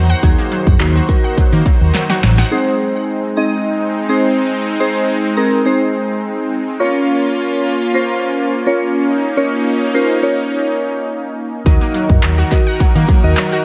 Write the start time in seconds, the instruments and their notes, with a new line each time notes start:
Already playing: fingered electric bass E2, supersaw synth D#3 D#4 F#4 C5, synth keys A#3 D#4 F#4 A#4
0.10 synth pluck F#5, closed hi-hat
0.23 fingered electric bass D#2, synth pluck F#3, synth keys A#3 D#4 F#4 G#4, kick, closed hi-hat
0.38 synth pluck A#3
0.52 synth pluck F#3, closed hi-hat
0.67 fingered electric bass F#2, kick
0.80 fingered electric bass D#2, synth pluck F#3, synth keys A#3 D#4 F#4 C5, clap, closed hi-hat
0.95 synth pluck F#4
1.08 synth keys A#3 D#4 F#4 A#4, kick, closed hi-hat
1.24 synth pluck F#5
1.37 synth pluck F#3, muted fingered electric bass stroke, kick, closed hi-hat
1.52 fingered electric bass D#3, synth pluck A#3
1.66 synth pluck F#3, kick, closed hi-hat
1.81 fingered electric bass D#2
1.94 synth pluck F#3, snare, clap, closed hi-hat
2.10 synth pluck F#4, snare, closed hi-hat
2.23 fingered electric bass A1, synth pluck F#3, snare, closed hi-hat
2.38 synth pluck F#5, snare, closed hi-hat
2.51 supersaw synth G#3 C4 D#4, synth keys C4 D#4 G#4 C5
3.37 synth keys C4 D#4 G#4 D#5
4.09 synth keys C4 D#4 G#4 C5
4.80 synth keys C4 D#4 G#4 C5
5.37 synth keys C4 D#4 G#4 A#4
5.65 synth keys C4 D#4 G#4 C5
6.80 supersaw synth A#3 C#4 F4, synth keys C#4 F4 A#4 C#5
7.94 synth keys C#4 F4 A#4 C5
8.66 synth keys C#4 F4 A#4 C#5
9.09 supersaw synth D#4
9.37 synth keys C#4 F4 A#4 C#5
9.94 synth keys C#4 F4 A#4 C5
10.22 synth keys C#4 F4 A#4 C#5
11.66 fingered electric bass D#2, supersaw synth D#3 D#4 F#4 A#4, synth pluck F#3, synth keys D#4 F#4 A#4 D#5, kick, closed hi-hat
11.81 synth pluck A#3
11.94 synth pluck F#3, closed hi-hat
12.10 fingered electric bass F#2, kick
12.23 fingered electric bass D#2, synth pluck F#3, clap, closed hi-hat
12.38 synth pluck F#4
12.51 synth keys D#4 F#4 A#4 D#5, kick, clap, closed hi-hat
12.67 synth pluck F#5
12.80 synth pluck F#3, muted fingered electric bass stroke, kick, closed hi-hat
12.95 fingered electric bass D#3, synth pluck A#3
13.08 synth pluck F#3, kick, closed hi-hat
13.24 fingered electric bass D#2, synth keys D#4 F#4 A#4 D#5
13.37 synth pluck F#3, clap, closed hi-hat
13.52 synth pluck F#4